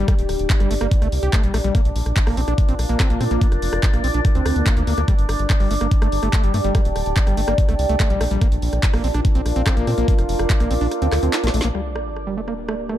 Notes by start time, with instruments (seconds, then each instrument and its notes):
Already playing: synth drone D4 D5, ambient pad G4 D5 G5
0.08 acid bass G3, kick, cross-stick, closed hi-hat
0.19 analog synth bass D1, closed hi-hat
0.29 analog synth bass D1, cross-stick, open hi-hat
0.39 analog synth bass D1, closed hi-hat
0.50 kick, clap, closed hi-hat
0.60 analog synth bass G1, acid bass G3, cross-stick, closed hi-hat
0.71 analog synth bass G1, acid bass A3, open hi-hat
0.81 analog synth bass G1, acid bass A#3, cross-stick, closed hi-hat
0.91 kick, closed hi-hat
1.02 analog synth bass C2, acid bass A3, cross-stick, closed hi-hat
1.12 analog synth bass C2, open hi-hat
1.23 analog synth bass C2, acid bass G4, closed hi-hat
1.33 acid bass A3, kick, cross-stick, clap, closed hi-hat
1.44 analog synth bass A#1, acid bass G3, closed hi-hat
1.54 analog synth bass A#1, acid bass A3, cross-stick, open hi-hat
1.64 analog synth bass A#1, acid bass G3, closed hi-hat
1.75 acid bass A#3, ambient pad F4, kick, cross-stick, closed hi-hat
1.85 analog synth bass A#1, ambient pad A#4 F5, closed hi-hat
1.96 analog synth bass A#1, open hi-hat
2.06 analog synth bass A#1, cross-stick, closed hi-hat
2.16 kick, clap, closed hi-hat
2.27 analog synth bass A#1, acid bass A#3, cross-stick, open hi-hat
2.37 analog synth bass A#1, acid bass C4, open hi-hat
2.48 analog synth bass A#1, acid bass D4, cross-stick, closed hi-hat
2.58 kick, closed hi-hat
2.69 analog synth bass A#1, acid bass C4, closed hi-hat
2.79 analog synth bass A#1, cross-stick, open hi-hat
2.89 analog synth bass A#1, acid bass A#3, closed hi-hat
3.00 acid bass C4, kick, cross-stick, clap, closed hi-hat
3.10 analog synth bass A#1, acid bass A#3, closed hi-hat
3.21 analog synth bass A#2, acid bass C4, cross-stick, open hi-hat
3.31 analog synth bass A#1, acid bass A#3, closed hi-hat
3.41 acid bass A#3, kick, closed hi-hat
3.52 analog synth bass F1, cross-stick, closed hi-hat
3.62 analog synth bass F1, open hi-hat
3.73 analog synth bass F1, cross-stick, closed hi-hat
3.83 kick, clap, closed hi-hat
3.94 analog synth bass A#1, acid bass A#3, cross-stick, closed hi-hat
4.04 analog synth bass A#1, acid bass C4, open hi-hat
4.14 analog synth bass A#1, acid bass D4, closed hi-hat
4.25 kick, cross-stick, closed hi-hat
4.35 analog synth bass D2, acid bass C4, closed hi-hat
4.46 analog synth bass D2, cross-stick, open hi-hat
4.56 analog synth bass D2, acid bass A#3, closed hi-hat
4.66 acid bass A#3, kick, cross-stick, clap, closed hi-hat
4.77 analog synth bass D2, acid bass A#3, closed hi-hat
4.87 analog synth bass D2, acid bass A#3, open hi-hat
4.98 analog synth bass D2, acid bass A#3, cross-stick, closed hi-hat
5.08 acid bass G3, ambient pad G4, kick, cross-stick, closed hi-hat
5.18 analog synth bass G1, closed hi-hat
5.23 ambient pad D5
5.29 analog synth bass G1, cross-stick, open hi-hat
5.39 analog synth bass G1, closed hi-hat
5.50 kick, cross-stick, clap, closed hi-hat
5.60 analog synth bass G1, acid bass G3, open hi-hat
5.71 analog synth bass G1, acid bass A3, open hi-hat
5.79 analog synth bass G1, acid bass A#3, ambient pad G5, cross-stick, closed hi-hat
5.91 kick, closed hi-hat
6.02 analog synth bass G1, acid bass A3, cross-stick, closed hi-hat
6.12 analog synth bass G1, open hi-hat
6.23 analog synth bass G1, acid bass A3, cross-stick, closed hi-hat
6.33 acid bass A3, kick, clap, closed hi-hat
6.44 analog synth bass G1, acid bass G3, closed hi-hat
6.54 analog synth bass G2, acid bass A3, cross-stick, open hi-hat
6.64 analog synth bass G1, acid bass G3, closed hi-hat
6.75 acid bass G3, kick, cross-stick, closed hi-hat
6.85 analog synth bass D1, closed hi-hat
6.96 analog synth bass D1, cross-stick, open hi-hat
7.06 analog synth bass D1, closed hi-hat
7.16 kick, clap, closed hi-hat
7.27 analog synth bass G1, acid bass G3, cross-stick, closed hi-hat
7.37 analog synth bass G1, acid bass A3, open hi-hat
7.48 analog synth bass G1, acid bass A#3, cross-stick, closed hi-hat
7.58 kick, closed hi-hat
7.69 analog synth bass C2, acid bass A3, cross-stick, closed hi-hat
7.79 analog synth bass C2, open hi-hat
7.89 analog synth bass C2, acid bass A3, closed hi-hat
8.00 acid bass A3, kick, cross-stick, clap, closed hi-hat
8.10 analog synth bass A#1, acid bass G3, closed hi-hat
8.21 analog synth bass A#1, acid bass A3, cross-stick, open hi-hat
8.31 analog synth bass A#1, acid bass G3, closed hi-hat
8.41 acid bass A#3, ambient pad F4, kick, cross-stick, closed hi-hat
8.52 analog synth bass A#1, closed hi-hat
8.62 analog synth bass A#1, open hi-hat
8.73 analog synth bass A#1, ambient pad A#4, cross-stick, closed hi-hat
8.83 kick, clap, closed hi-hat
8.94 analog synth bass A#1, acid bass A#3, cross-stick, open hi-hat
9.01 analog synth bass A#1, acid bass C4, ambient pad F5, open hi-hat
9.14 analog synth bass A#1, acid bass D4, cross-stick, closed hi-hat
9.25 kick, closed hi-hat
9.35 analog synth bass A#1, acid bass C4, closed hi-hat
9.46 analog synth bass A#1, cross-stick, open hi-hat
9.56 analog synth bass A#1, acid bass C4, closed hi-hat
9.66 acid bass C4, kick, cross-stick, clap, closed hi-hat
9.77 analog synth bass A#1, acid bass A#3, closed hi-hat
9.87 analog synth bass A#2, acid bass C4, cross-stick, open hi-hat
9.98 analog synth bass A#1, acid bass A#3, closed hi-hat
10.08 acid bass A#3, kick, closed hi-hat
10.19 analog synth bass F1, cross-stick, closed hi-hat
10.29 analog synth bass F1, open hi-hat
10.39 analog synth bass F1, cross-stick, closed hi-hat
10.50 kick, clap, closed hi-hat
10.60 analog synth bass A#1, acid bass A#3, cross-stick, closed hi-hat
10.71 analog synth bass A#1, acid bass C4, open hi-hat
10.81 analog synth bass A#1, acid bass D4, open hi-hat
10.91 cross-stick, closed hi-hat
11.02 analog synth bass D2, acid bass C4, closed hi-hat
11.12 analog synth bass D2, cross-stick, clap, open hi-hat
11.23 analog synth bass D2, acid bass C4, closed hi-hat
11.33 acid bass F4, snare, clap, closed hi-hat
11.44 analog synth bass A#1, acid bass A#3, snare, closed hi-hat
11.54 analog synth bass A#1, acid bass A3, open hi-hat
11.61 analog synth bass A#1, acid bass A#3, snare, closed hi-hat
11.75 acid bass G3, synth drone A#3 A#4, ambient pad G4, cross-stick, sub drop
11.94 ambient pad D5, cross-stick
12.16 cross-stick
12.27 acid bass G3
12.37 acid bass A3, ambient pad G5
12.48 acid bass A#3, cross-stick
12.69 acid bass A3, cross-stick
12.89 acid bass A3, cross-stick